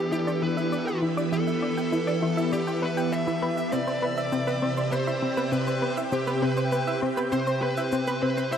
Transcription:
Already playing: string machine E3 B3 D4 G4 B4 E5
0.00 lead electric guitar G4, string machine B5
0.12 synth arpeggio sound E4, lead electric guitar G4, cabasa
0.27 synth arpeggio sound D5, cabasa, low woodblock
0.42 synth arpeggio sound E4, lead electric guitar B4
0.57 synth arpeggio sound E5, cabasa
0.72 synth arpeggio sound D5, cabasa
0.87 synth arpeggio sound G5, cabasa
1.02 synth arpeggio sound E4
1.17 synth arpeggio sound D5, cabasa
1.32 synth arpeggio sound E4, lead electric guitar A4, cabasa
1.47 synth arpeggio sound E5, cabasa
1.62 synth arpeggio sound D5
1.77 synth arpeggio sound G5, cabasa
1.92 synth arpeggio sound E4, cabasa
2.07 synth arpeggio sound D5, cabasa
2.22 synth arpeggio sound E4, low woodblock
2.37 synth arpeggio sound E5, cabasa
2.52 lead electric guitar G4, synth arpeggio sound D5, cabasa
2.67 synth arpeggio sound G5, cabasa, low woodblock
2.82 synth arpeggio sound B4, lead electric guitar B4, low woodblock
2.97 synth arpeggio sound G5, cabasa
3.12 synth arpeggio sound E5, lead electric guitar E5, cabasa
3.27 synth arpeggio sound E4, cabasa
3.42 synth arpeggio sound B4
3.57 synth arpeggio sound E5, cabasa
3.72 string machine C3, synth arpeggio sound C4, lead electric guitar D5, cabasa
3.87 string machine C4, synth arpeggio sound C5, cabasa, low woodblock
4.02 synth arpeggio sound B4
4.17 synth arpeggio sound E5, cabasa
4.31 synth arpeggio sound C4, string machine G4, cabasa
4.47 synth arpeggio sound B4, cabasa
4.62 synth arpeggio sound C4, low woodblock
4.77 synth arpeggio sound C5, cabasa
4.92 synth arpeggio sound B4, lead electric guitar C5, cabasa
5.07 synth arpeggio sound E5, cabasa, low woodblock
5.22 synth arpeggio sound C4, string machine G5
5.37 synth arpeggio sound B4, cabasa
5.52 synth arpeggio sound C4, lead electric guitar B4, cabasa
5.67 synth arpeggio sound C5, cabasa
5.82 synth arpeggio sound B4
5.97 synth arpeggio sound E5, cabasa
6.12 synth arpeggio sound C4, lead electric guitar G4, cabasa
6.27 synth arpeggio sound B4, cabasa
6.42 synth arpeggio sound C4, lead electric guitar B4
6.57 synth arpeggio sound C5, cabasa
6.72 synth arpeggio sound B4, cabasa
6.87 synth arpeggio sound E5, cabasa
7.02 synth arpeggio sound C4, low woodblock
7.17 synth arpeggio sound B4, cabasa
7.32 synth arpeggio sound C4, lead electric guitar C5, cabasa
7.47 synth arpeggio sound C5, cabasa, low woodblock
7.62 lead electric guitar B4, synth arpeggio sound B4, low woodblock
7.77 synth arpeggio sound E5, cabasa
7.92 synth arpeggio sound C4, cabasa
8.07 synth arpeggio sound B4, cabasa
8.22 synth arpeggio sound C4, lead electric guitar B4
8.37 synth arpeggio sound C5, cabasa
8.52 lead electric guitar C5, synth arpeggio sound E5, cabasa

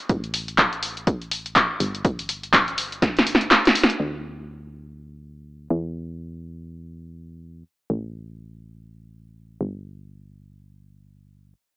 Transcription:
0.09 fm bass A1, kick, closed hi-hat
0.24 closed hi-hat
0.34 open hi-hat
0.48 closed hi-hat
0.58 kick, clap, closed hi-hat
0.73 closed hi-hat
0.83 open hi-hat
0.97 closed hi-hat
1.07 kick, closed hi-hat
1.22 closed hi-hat
1.31 open hi-hat
1.46 closed hi-hat
1.56 kick, clap, closed hi-hat
1.80 fm bass G1, open hi-hat
1.95 closed hi-hat
2.05 kick, closed hi-hat
2.19 open hi-hat
2.29 open hi-hat
2.43 closed hi-hat
2.53 kick, clap, closed hi-hat
2.68 closed hi-hat
2.78 open hi-hat
2.92 closed hi-hat
3.02 kick, snare, closed hi-hat
3.17 snare, closed hi-hat
3.27 open hi-hat
3.35 snare
3.41 closed hi-hat
3.51 snare, clap, closed hi-hat
3.65 snare, closed hi-hat
3.75 open hi-hat
3.84 snare
3.90 closed hi-hat
4.00 fm bass D2
5.70 fm bass E2
7.90 fm bass A1
9.61 fm bass G1

